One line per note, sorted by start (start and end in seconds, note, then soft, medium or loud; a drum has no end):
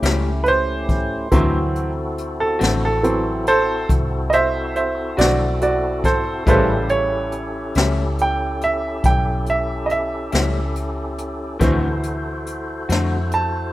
0.00 1.28 C#2 medium
0.00 0.29 G3 medium
0.00 1.29 A3 medium
0.00 1.28 C#4 medium
0.00 0.29 C#4 medium
0.00 1.28 E4 medium
0.00 0.29 E4 medium
0.00 1.29 G4 medium
0.00 closed hi-hat medium
0.04 0.29 A2 medium
0.04 snare loud
0.44 0.48 B4 medium
0.44 closed hi-hat soft
0.48 2.36 C5 medium
0.89 kick medium
0.89 closed hi-hat soft
1.31 2.57 D2 medium
1.31 1.58 D3 medium
1.31 1.89 E3 soft
1.31 1.89 F#3 soft
1.31 1.58 A3 medium
1.31 1.89 C4 soft
1.31 1.58 C4 medium
1.31 6.44 C4 medium
1.31 6.44 E4 medium
1.31 1.59 F#4 medium
1.31 6.44 F#4 medium
1.31 6.44 A4 medium
1.31 kick medium
1.31 closed hi-hat medium
1.75 closed hi-hat soft
2.18 closed hi-hat medium
2.40 2.81 A4 medium
2.59 3.86 A1 medium
2.59 2.87 D3 medium
2.59 2.86 A3 soft
2.59 2.86 C4 medium
2.59 2.86 F#4 medium
2.59 closed hi-hat medium
2.63 snare medium
2.85 3.46 A4 medium
3.03 3.42 E3 soft
3.03 3.42 F#3 soft
3.03 3.43 C4 soft
3.03 closed hi-hat medium
3.47 3.87 A4 medium
3.47 3.89 C5 medium
3.47 closed hi-hat medium
3.89 5.14 C2 medium
3.89 kick medium
3.89 closed hi-hat medium
4.30 4.73 C5 medium
4.30 4.34 D#5 medium
4.30 4.75 E5 medium
4.30 closed hi-hat medium
4.76 5.16 C5 medium
4.76 5.18 E5 medium
4.76 closed hi-hat soft
5.17 6.43 B1 medium
5.17 5.44 D3 soft
5.17 5.44 A3 soft
5.17 5.44 C4 medium
5.17 5.43 F#4 medium
5.17 5.58 F#4 medium
5.17 5.60 D5 medium
5.17 snare loud
5.17 closed hi-hat medium
5.61 6.01 F#4 soft
5.61 6.04 D5 medium
5.61 closed hi-hat medium
6.04 6.45 A4 medium
6.04 6.46 C5 medium
6.04 kick medium
6.04 snare soft
6.04 closed hi-hat medium
6.46 7.72 A1 medium
6.46 6.72 A2 medium
6.46 7.72 C#3 soft
6.46 6.73 G3 medium
6.46 7.72 G3 soft
6.46 11.58 C#4 medium
6.46 6.73 C#4 medium
6.46 6.73 E4 medium
6.46 11.58 E4 medium
6.46 11.58 G4 medium
6.46 11.58 A4 medium
6.46 6.88 A4 medium
6.46 7.72 B4 soft
6.46 6.90 C5 medium
6.46 kick medium
6.46 closed hi-hat medium
6.89 7.73 C#5 medium
6.89 closed hi-hat soft
7.32 closed hi-hat soft
7.75 9.01 C#2 medium
7.75 8.03 A2 soft
7.75 8.02 G3 soft
7.75 8.02 C#4 medium
7.75 8.02 E4 medium
7.75 snare medium
7.75 closed hi-hat medium
8.18 8.62 G5 medium
8.18 closed hi-hat medium
8.61 9.04 E5 medium
8.61 closed hi-hat medium
9.04 10.29 B1 medium
9.04 9.47 G5 medium
9.04 kick medium
9.04 closed hi-hat medium
9.46 9.90 E5 medium
9.46 closed hi-hat soft
9.86 9.91 D#5 soft
9.86 closed hi-hat soft
9.91 10.74 E5 medium
10.32 11.58 C#2 medium
10.32 10.59 A2 soft
10.32 10.59 G3 soft
10.32 10.58 C#4 soft
10.32 10.58 E4 soft
10.32 snare medium
10.32 closed hi-hat medium
10.75 closed hi-hat medium
11.18 closed hi-hat medium
11.59 12.85 D2 medium
11.59 11.86 D3 medium
11.59 13.73 E3 soft
11.59 11.86 A3 medium
11.59 11.87 C4 medium
11.59 13.73 E4 medium
11.59 13.73 F#4 medium
11.59 11.87 F#4 medium
11.59 13.73 F#4 soft
11.59 13.73 A4 medium
11.59 13.73 C5 medium
11.59 13.73 C5 soft
11.59 kick medium
11.59 closed hi-hat medium
12.03 closed hi-hat medium
12.46 closed hi-hat medium
12.89 13.73 F2 medium
12.89 13.16 D3 medium
12.89 13.16 A3 medium
12.89 13.15 C4 medium
12.89 13.15 F#4 medium
12.89 snare medium
12.89 closed hi-hat medium
13.31 13.73 A5 medium
13.31 closed hi-hat medium